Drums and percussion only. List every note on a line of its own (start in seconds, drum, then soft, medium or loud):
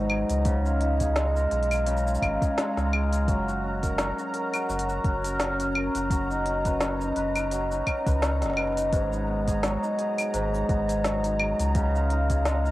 0.10 claves medium
0.30 open hi-hat soft
0.30 cabasa medium
0.45 kick loud
0.45 open hi-hat medium
0.45 cabasa medium
0.66 cabasa soft
0.81 open hi-hat soft
1.00 kick medium
1.00 open hi-hat soft
1.00 cabasa medium
1.16 snare loud
1.16 open hi-hat medium
1.16 cabasa medium
1.36 cabasa soft
1.51 open hi-hat soft
1.63 open hi-hat soft
1.71 open hi-hat soft
1.71 cabasa medium
1.71 claves medium
1.75 open hi-hat soft
1.86 open hi-hat medium
1.86 cabasa soft
1.97 cabasa soft
2.07 cabasa soft
2.15 cabasa soft
2.22 kick medium
2.22 open hi-hat soft
2.22 claves medium
2.42 kick loud
2.42 open hi-hat soft
2.42 cabasa medium
2.58 snare loud
2.58 open hi-hat medium
2.58 cabasa medium
2.77 snare soft
2.77 cabasa soft
2.93 claves medium
3.12 open hi-hat soft
3.12 cabasa medium
3.28 kick loud
3.28 open hi-hat medium
3.28 cabasa medium
3.49 cabasa soft
3.83 kick medium
3.83 open hi-hat soft
3.83 cabasa medium
3.98 snare loud
3.98 open hi-hat medium
3.98 cabasa medium
4.19 cabasa soft
4.34 open hi-hat soft
4.54 open hi-hat soft
4.54 cabasa medium
4.54 claves medium
4.70 cabasa medium
4.79 open hi-hat medium
4.89 cabasa soft
5.04 kick loud
5.04 open hi-hat soft
5.25 open hi-hat soft
5.25 cabasa medium
5.40 snare loud
5.40 open hi-hat medium
5.40 cabasa medium
5.60 open hi-hat soft
5.60 cabasa soft
5.75 claves medium
5.95 open hi-hat soft
5.95 cabasa medium
6.10 kick loud
6.10 open hi-hat medium
6.10 cabasa medium
6.31 cabasa soft
6.46 open hi-hat soft
6.65 kick medium
6.65 open hi-hat soft
6.65 cabasa medium
6.81 snare loud
6.81 open hi-hat medium
6.81 cabasa medium
7.01 cabasa soft
7.16 open hi-hat soft
7.35 open hi-hat soft
7.35 cabasa medium
7.35 claves medium
7.51 open hi-hat medium
7.51 cabasa medium
7.71 cabasa soft
7.87 kick medium
7.87 open hi-hat soft
7.87 claves medium
8.07 kick loud
8.07 open hi-hat soft
8.07 cabasa medium
8.22 snare loud
8.22 open hi-hat medium
8.22 cabasa medium
8.42 snare soft
8.42 open hi-hat soft
8.42 cabasa soft
8.46 snare soft
8.50 snare soft
8.54 snare soft
8.57 snare soft
8.57 claves medium
8.62 snare soft
8.67 snare soft
8.72 snare soft
8.77 open hi-hat soft
8.77 cabasa medium
8.93 kick loud
8.93 open hi-hat soft
8.93 cabasa medium
9.13 cabasa soft
9.48 kick medium
9.48 open hi-hat soft
9.48 cabasa medium
9.63 snare medium
9.63 open hi-hat medium
9.63 cabasa medium
9.84 cabasa soft
9.99 open hi-hat soft
10.18 open hi-hat soft
10.18 cabasa medium
10.18 claves medium
10.34 open hi-hat medium
10.34 cabasa medium
10.54 cabasa soft
10.69 kick loud
10.69 open hi-hat soft
10.89 open hi-hat soft
10.89 cabasa medium
11.04 snare loud
11.04 open hi-hat medium
11.04 cabasa medium
11.24 open hi-hat soft
11.24 cabasa soft
11.40 claves medium
11.59 open hi-hat soft
11.59 cabasa medium
11.75 kick loud
11.75 open hi-hat medium
11.75 cabasa medium
11.95 cabasa soft
12.10 open hi-hat soft
12.30 kick medium
12.30 open hi-hat soft
12.30 cabasa medium
12.45 snare medium
12.45 open hi-hat medium
12.45 cabasa medium
12.66 cabasa soft